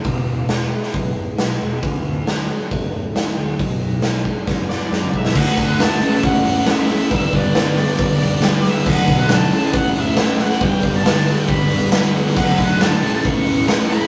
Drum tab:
CC |----------------|----------------|----------------|x---------------|
HH |o---o---o---o---|o---o---o---o---|o---o-----------|--o-o-o-o-o-o-o-|
SD |----o--o----o---|----o-------o---|----o---o-o-o--o|----o-------o-o-|
T2 |----------------|----------------|-------------o--|----------------|
BD |o-------o-------|o-------o-------|o-----o-o-----o-|o-o-----o-------|

CC |----------------|x---------------|----------------|x---------------|
HH |o-o-o-o-o-o-o-o-|--o-o-o-o-o-o-o-|o-o-o-o-o-o-o-o-|--o-o-o-o-o-o-o-|
SD |----o-------o-o-|----o-------o-oo|----o-------o-oo|----o-------o---|
T2 |----------------|----------------|----------------|----------------|
BD |o-o-----o-------|o-o-----o-------|o-o-----o-------|o-o-----o-------|